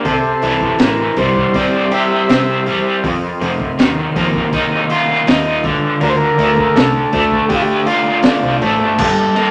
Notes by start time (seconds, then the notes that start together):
Already playing: G4
0.04 C2 C3 A4 C5 E5 C6, kick, open hi-hat
0.42 C2 E3, open hi-hat
0.61 kick
0.79 A1 E3 A#4, snare, open hi-hat
1.16 C2 G3 C5, kick, open hi-hat
1.35 kick
1.54 C4 D5, kick, open hi-hat
1.92 G4 E5, open hi-hat
2.29 C3 C4, snare, open hi-hat
2.66 E2 G3, open hi-hat
3.04 F2 A#4 D#5 F5, kick, open hi-hat
3.41 F2 C3, open hi-hat
3.60 kick
3.79 D#2 D#3, snare, open hi-hat
4.16 F2 A#3, kick, open hi-hat
4.34 kick
4.53 D#4, kick, open hi-hat
4.90 F4, open hi-hat
5.27 D#2 D#4, snare, open hi-hat
5.64 D2 D3 D5 A5 D6, kick, open hi-hat
6.01 D2 D3 A#4, open hi-hat
6.09 C5
6.17 A#4
6.38 D2 A3, open hi-hat
6.57 kick
6.75 C2 D3 A4, snare, open hi-hat
7.13 D2 A3, kick, open hi-hat
7.31 kick
7.49 D4 G4, kick, open hi-hat
7.55 F4
7.62 G4
7.86 F4, open hi-hat
8.23 D3 D4, snare, open hi-hat
8.43 C2
8.61 A1 A3 A4, open hi-hat
8.80 G1 A4
8.97 G1 G2 A#3 F5 G5 D6, kick, crash
9.36 A#3, crash